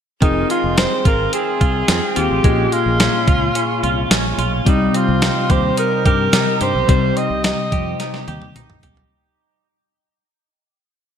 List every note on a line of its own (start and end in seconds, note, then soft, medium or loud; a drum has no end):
0.21 0.43 F1 medium
0.21 2.44 D#3 medium
0.21 2.12 C4 medium
0.21 2.12 D#4 medium
0.21 0.49 D#4 medium
0.21 2.13 F4 medium
0.21 2.13 G#4 medium
0.21 kick medium
0.21 closed hi-hat medium
0.50 2.44 G#3 soft
0.50 0.76 F4 medium
0.50 closed hi-hat medium
0.64 0.85 F1 medium
0.78 1.32 C4 medium
0.78 1.04 C5 loud
0.78 snare loud
0.78 closed hi-hat medium
1.05 1.26 G#1 medium
1.05 1.60 F4 medium
1.05 1.32 A#4 medium
1.05 kick medium
1.05 closed hi-hat medium
1.33 1.88 C4 medium
1.33 2.19 G#4 medium
1.33 closed hi-hat medium
1.61 1.82 C2 medium
1.61 2.16 F4 medium
1.61 kick medium
1.61 closed hi-hat medium
1.88 1.99 F2 medium
1.88 2.50 C4 medium
1.88 snare loud
1.88 closed hi-hat medium
2.16 2.27 D#2 medium
2.16 2.44 C4 soft
2.16 2.44 D#4 soft
2.16 3.27 F4 medium
2.16 2.43 F4 soft
2.16 2.74 G4 medium
2.16 2.44 G#4 soft
2.16 closed hi-hat medium
2.30 2.41 A1 medium
2.43 2.65 A#1 loud
2.43 3.23 A#2 medium
2.43 2.71 G#3 medium
2.43 4.62 A#3 medium
2.43 4.62 C#4 medium
2.43 4.63 F4 medium
2.43 4.63 G#4 medium
2.43 kick medium
2.43 closed hi-hat medium
2.72 4.72 G#3 medium
2.72 4.39 F4 medium
2.72 closed hi-hat medium
2.86 3.07 A#1 medium
3.00 3.54 C#4 medium
3.00 snare loud
3.00 closed hi-hat medium
3.28 3.48 C#2 medium
3.28 3.82 F4 medium
3.28 kick medium
3.28 closed hi-hat medium
3.55 4.10 C#4 medium
3.55 closed hi-hat medium
3.83 4.04 C2 medium
3.83 4.37 F4 medium
3.83 closed hi-hat medium
4.11 4.32 A#1 medium
4.11 4.72 C#4 medium
4.11 snare loud
4.11 closed hi-hat loud
4.38 4.59 B1 medium
4.38 4.72 F4 medium
4.38 closed hi-hat medium
4.65 4.87 C2 medium
4.65 5.46 C3 medium
4.65 6.84 G3 medium
4.65 6.89 G3 medium
4.65 6.84 C4 medium
4.65 6.85 D#4 medium
4.65 4.98 D#4 medium
4.65 6.85 G4 medium
4.65 kick medium
4.65 closed hi-hat medium
4.94 7.17 C4 medium
4.94 5.53 F4 medium
4.94 closed hi-hat medium
5.08 5.29 C2 loud
5.22 5.77 D#4 medium
5.22 snare loud
5.22 closed hi-hat medium
5.50 5.71 D#2 medium
5.50 6.05 G4 medium
5.50 5.78 C5 medium
5.50 kick medium
5.50 closed hi-hat medium
5.77 6.33 D#4 medium
5.77 6.04 A#4 medium
5.77 closed hi-hat medium
6.06 6.26 G2 medium
6.06 6.61 G4 medium
6.06 6.58 A#4 medium
6.06 kick medium
6.06 closed hi-hat medium
6.33 6.43 C3 loud
6.33 7.44 D#4 medium
6.33 snare loud
6.33 closed hi-hat medium
6.61 6.71 G2 medium
6.61 7.72 G4 medium
6.61 6.88 C5 medium
6.61 closed hi-hat medium
6.75 6.85 B1 medium
6.88 7.10 C2 medium
6.88 7.68 C3 medium
6.88 9.06 G3 medium
6.88 9.67 G3 medium
6.88 9.07 C4 medium
6.88 9.07 D#4 medium
6.88 9.08 G4 medium
6.88 7.19 C5 loud
6.88 kick medium
6.88 closed hi-hat medium
7.17 9.67 C4 medium
7.17 7.45 D#5 loud
7.17 closed hi-hat medium
7.30 7.51 C2 medium
7.44 7.99 D#4 medium
7.44 7.97 D#5 medium
7.44 snare loud
7.44 closed hi-hat medium
7.72 7.93 F2 medium
7.72 8.28 G4 medium
7.72 kick medium
7.72 closed hi-hat medium
8.00 8.56 D#4 medium
8.00 snare medium
8.00 closed hi-hat medium
8.14 snare soft
8.27 8.48 D#2 medium
8.27 8.83 G4 medium
8.27 closed hi-hat medium
8.27 high tom medium
8.42 high tom medium
8.55 8.76 C2 medium
8.55 9.67 D#4 medium
8.55 closed hi-hat medium
8.55 mid tom medium
8.70 mid tom medium
8.83 9.04 B1 medium
8.83 9.67 G4 medium
8.83 closed hi-hat medium
8.83 floor tom medium
8.97 floor tom medium